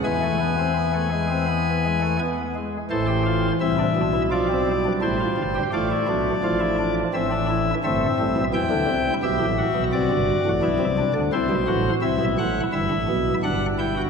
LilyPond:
<<
  \new Staff \with { instrumentName = "Pipe organ" } { \time 4/4 \key a \minor \tempo 4 = 85 << { gis''2.~ gis''8 r8 | c''4 e''4 d''4 c''4 | d''2 e''4 e''4 | g''4 e''4 d''2 |
c''4 e''8 fis''8 e''4 fis''8 g''8 | } \\ { b'2.~ b'8 r8 | a'16 g'16 f'8 e'16 d'8 e'16 f'16 c'8 d'16 e'16 f'8 g'16 | f'16 e'16 d'8 f'16 e'16 d'8 c'16 d'16 e'8 c'4 | e'4 g'8 fis'4. e'8 d'8 |
e'8 fis'8 e'4 e'4 d'8 e'16 fis'16 | } >> }
  \new Staff \with { instrumentName = "Pipe organ" } { \clef bass \time 4/4 \key a \minor << { gis16 a16 b16 c'16 b16 a16 gis16 c'16 b8 gis16 a16 b8 gis8 | e2 f8 g4. | a4 f4 e4 a8 g8 | r1 |
r1 | } \\ { <e, e>2.~ <e, e>8 r8 | <a,, a,>4 <c, c>8 <b,, b,>4. <a,, a,>8 <g,, g,>8 | <a,, a,>8 <b,, b,>8 <a,, a,>4 <a,, a,>4 <g,, g,>8 <a,, a,>16 <b,, b,>16 | <e, e>16 <d, d>16 <c, c>8 <b,, b,>16 <a,, a,>8 <b,, b,>16 <c, c>16 <g,, g,>8 <a,, a,>16 <b,, b,>16 <c, c>8 <d, d>16 |
<c, c>16 <b,, b,>16 <a,, a,>8 <c, c>16 <b,, b,>16 <a,, a,>8 <g,, g,>16 <a,, a,>16 <b,, b,>8 <g,, g,>4 | } >> }
>>